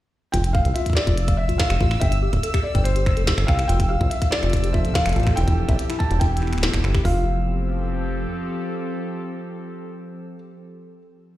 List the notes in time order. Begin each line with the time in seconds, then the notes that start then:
0.32 F1 F4 G5 E6, kick, closed hi-hat
0.44 closed hi-hat
0.53 F5, kick
0.65 C2, closed hi-hat
0.74 F4 E5, closed hi-hat
0.86 kick, closed hi-hat
0.90 kick
0.93 G4 D5, kick, snare
1.07 F1 F4, kick, closed hi-hat
1.18 closed hi-hat
1.28 F5, kick, closed hi-hat
1.37 E5
1.49 C2 F4, closed hi-hat
1.58 F5, kick, snare, closed hi-hat
1.70 F1 G4, finger snap, closed hi-hat
1.81 A1 F4, kick
1.91 finger snap
2.00 G1 E5 G5, kick, closed hi-hat
2.12 closed hi-hat
2.22 G4
2.33 D1, kick, closed hi-hat
2.43 A4, closed hi-hat
2.54 G4, finger snap, kick, closed hi-hat
2.63 D5
2.75 G1 G5, kick, closed hi-hat
2.84 C5, closed hi-hat
2.96 G4, closed hi-hat
3.06 finger snap, kick
3.17 F1 A4, closed hi-hat
3.27 G4, kick, snare, closed hi-hat
3.38 G1, finger snap
3.47 C2 F5 G5, finger snap, kick
3.59 finger snap, closed hi-hat
3.68 F1 F3 F4 G5, closed hi-hat
3.80 kick, closed hi-hat
3.89 G4 F5
3.93 C4
4.01 C2 F4, kick
4.10 A4 E5, closed hi-hat
4.17 G4
4.22 F5, kick, closed hi-hat
4.31 D5, snare
4.43 F1 F4, finger snap, closed hi-hat
4.50 kick, closed hi-hat
4.53 closed hi-hat
4.57 closed hi-hat
4.64 G4, closed hi-hat
4.73 F4 E5, kick
4.85 C2, closed hi-hat
4.94 F5, kick, snare, closed hi-hat
5.06 F1, finger snap, closed hi-hat
5.09 closed hi-hat
5.13 F4, closed hi-hat
5.16 A1, closed hi-hat
5.20 closed hi-hat
5.23 finger snap, kick, closed hi-hat
5.36 E1 E3 E4 G5, closed hi-hat
5.48 E4, kick, closed hi-hat
5.69 B1 E5, kick, closed hi-hat
5.79 closed hi-hat
5.89 B3 E4, finger snap, closed hi-hat
5.99 A5, kick
6.11 E1 E4, closed hi-hat
6.20 E4 G5, kick, closed hi-hat
6.37 closed hi-hat
6.42 E4, finger snap
6.47 finger snap
6.53 D1, finger snap, closed hi-hat
6.58 finger snap
6.63 E4, snare, closed hi-hat
6.74 E1, finger snap, kick, closed hi-hat
6.84 G1 E4, finger snap
6.94 G4, finger snap, kick
7.05 F1 F3 F4 F5, kick, open hi-hat
7.11 C4
7.18 G4
7.24 A4